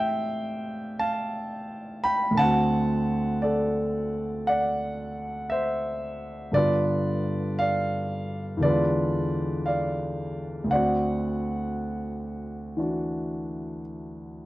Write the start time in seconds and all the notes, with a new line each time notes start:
Already playing: A2 E3 C4 G4 D5 E5 F5 G5
0.99 F5 A5
2.04 G5 B5
2.31 D2 D3
2.37 C4 F#5 A5
2.42 F#4
3.42 A4 D5
4.47 D5 F#5
5.50 C5 E5
6.52 G2 D3 B3 B4 D5
6.57 F4
7.59 D5 F5
8.57 E2
8.61 D3 G#3 B4 D5
8.68 F4
9.66 D5 F5
10.64 D2 D3
10.71 C4 D5 F#5
10.75 F#4
12.77 E3 D4 F#4